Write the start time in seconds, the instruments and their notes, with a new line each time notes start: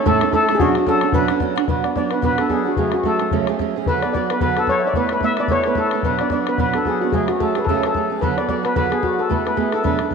0.05 steel-string acoustic guitar A2 E3 A3 C#4 E4 A4, steel pan A4, bodhran
0.21 steel-string acoustic guitar A3 C#4 E4 A4, bodhran
0.33 steel-string acoustic guitar A3 C#4 E4 A4, steel pan A4, bodhran
0.49 steel-string acoustic guitar A3 C#4 E4 A4, bodhran
0.55 steel pan G#4
0.59 steel-string acoustic guitar B2 F#3 C#4 D4 F#4, steel pan F#4, bodhran
0.75 steel-string acoustic guitar C#4 D4 F#4, bodhran
0.87 steel-string acoustic guitar F#3 C#4 D4 F#4, steel pan A4, bodhran
1.01 steel-string acoustic guitar C#4 D4 F#4, bodhran
1.12 steel-string acoustic guitar B2 F#3 C#4 D4 F#4, steel pan B4, bodhran
1.28 steel-string acoustic guitar C#4 D4 F#4, bodhran
1.40 steel-string acoustic guitar F#3 C#4 D4 F#4, bodhran
1.56 steel-string acoustic guitar C#4 D4 F#4, bodhran
1.68 steel-string acoustic guitar B2 F#3 B3 D4 F#4, steel pan B4, bodhran
1.84 steel-string acoustic guitar B3 D4 F#4, steel pan D5, bodhran
1.96 steel-string acoustic guitar F#3 B3 D4 F#4, steel pan D5, bodhran
2.11 steel-string acoustic guitar B3 D4 F#4, steel pan B4, bodhran
2.22 steel-string acoustic guitar B2 F#3 B3 D4 F#4, steel pan B4, bodhran
2.38 steel-string acoustic guitar B3 D4 F#4, steel pan A4, bodhran
2.49 steel-string acoustic guitar F#3 B3 D4 F#4, steel pan G#4, bodhran
2.64 steel-string acoustic guitar B3 D4 F#4, steel pan F#4
2.77 steel-string acoustic guitar F#2 C#3 F#3 A3 C#4 G#4, steel pan G#4, bodhran
2.92 steel-string acoustic guitar F#3 A3 C#4 G#4, steel pan F#4, bodhran
3.03 steel-string acoustic guitar F#3 A3 C#4 G#4, steel pan A4, bodhran
3.19 steel-string acoustic guitar F#3 A3 C#4 G#4, bodhran
3.31 steel-string acoustic guitar F#2 C#3 F#3 A3 C#4 G#4, bodhran
3.40 bodhran
3.47 steel-string acoustic guitar F#3 A3 C#4 G#4, bodhran
3.59 steel-string acoustic guitar F#3 A3 C#4 G#4, bodhran
3.76 steel-string acoustic guitar F#3 A3 C#4 G#4
3.86 steel-string acoustic guitar D3 F#3 B3 F#4 A4, steel pan B4, bodhran
4.02 steel-string acoustic guitar B3 F#4 A4, steel pan D5, bodhran
4.13 steel-string acoustic guitar F#3 B3 F#4 A4, steel pan D5, bodhran
4.30 steel-string acoustic guitar B3 F#4 A4, steel pan B4, bodhran
4.41 steel-string acoustic guitar D3 F#3 B3 F#4 A4, steel pan B4, bodhran
4.49 bodhran
4.57 steel-string acoustic guitar B3 F#4 A4, steel pan A4, bodhran
4.67 steel-string acoustic guitar F#3 B3 F#4 A4, steel pan C#5, bodhran
4.80 steel pan E5
4.84 steel-string acoustic guitar B3 F#4 A4, steel pan D5
4.93 steel-string acoustic guitar A3 B3 E4 A4, steel pan B4, bodhran
5.09 steel-string acoustic guitar B3 E4 A4, steel pan B4, bodhran
5.21 steel-string acoustic guitar A3 B3 E4, steel pan E5, bodhran
5.25 steel-string acoustic guitar A4
5.37 steel-string acoustic guitar B3 E4 A4, steel pan D5, bodhran
5.48 steel-string acoustic guitar A3 B3 E4 A4, steel pan C#5, bodhran
5.56 bodhran
5.64 steel-string acoustic guitar B3 E4 A4, steel pan B4, bodhran
5.75 steel-string acoustic guitar A3 B3 E4 A4, steel pan A4, bodhran
5.91 steel-string acoustic guitar B3 E4 A4, bodhran
6.03 steel-string acoustic guitar B2 F#3 B3 D4 F#4, steel pan B4, bodhran
6.19 steel-string acoustic guitar B3 D4 F#4, steel pan D5, bodhran
6.30 steel-string acoustic guitar F#3 B3 D4 F#4, steel pan D5, bodhran
6.47 steel-string acoustic guitar B3 D4 F#4, steel pan B4, bodhran
6.58 steel-string acoustic guitar B2 F#3 B3 D4 F#4, steel pan B4, bodhran
6.65 bodhran
6.74 steel-string acoustic guitar B3 D4 F#4, steel pan A4, bodhran
6.85 steel-string acoustic guitar F#3 B3 D4 F#4, steel pan G#4, bodhran
7.01 steel-string acoustic guitar B3 D4 F#4, steel pan F#4
7.12 steel-string acoustic guitar F#2 C#3 F#3 A3 C#4 G#4, steel pan G#4, bodhran
7.28 steel-string acoustic guitar F#3 A3 C#4 G#4, steel pan F#4, bodhran
7.40 steel-string acoustic guitar F#3 A3 C#4 G#4, steel pan A4, bodhran
7.55 steel-string acoustic guitar F#3 A3 C#4 G#4, steel pan B4, bodhran
7.64 steel-string acoustic guitar F#2, steel pan A4, bodhran
7.69 steel-string acoustic guitar C#3 F#3 A3 C#4 G#4
7.75 bodhran
7.83 steel-string acoustic guitar F#3 A3 C#4 G#4, steel pan G#4 A4, bodhran
7.94 steel-string acoustic guitar F#3 A3 C#4 G#4, bodhran
8.10 steel-string acoustic guitar F#3 A3 C#4 G#4
8.21 steel-string acoustic guitar D3 F#3 B3 F#4 A4, steel pan B4, bodhran
8.38 steel-string acoustic guitar B3 F#4 A4, steel pan D5, bodhran
8.48 steel-string acoustic guitar F#3 B3 F#4 A4, steel pan D5, bodhran
8.63 steel-string acoustic guitar B3 F#4 A4, steel pan B4, bodhran
8.75 steel-string acoustic guitar D3 F#3 B3 F#4 A4, steel pan B4, bodhran
8.85 bodhran
8.90 steel-string acoustic guitar B3 F#4 A4, steel pan G#4, bodhran
9.02 steel-string acoustic guitar F#3 B3 F#4 A4, steel pan F#4, bodhran
9.18 steel-string acoustic guitar B3 F#4 A4, steel pan A4
9.29 steel-string acoustic guitar A3 B3 E4 A4, steel pan B4, bodhran
9.45 steel-string acoustic guitar B3 E4 A4, steel pan B4, bodhran
9.57 steel-string acoustic guitar A3 B3 E4 A4, steel pan G#4, bodhran
9.72 steel-string acoustic guitar B3 E4 A4, steel pan A4, bodhran
9.83 steel-string acoustic guitar B2 F#3 A3 D4 A4, steel pan B4, bodhran
9.92 bodhran
9.99 steel-string acoustic guitar A3 D4 A4, bodhran
10.11 steel-string acoustic guitar F#3, bodhran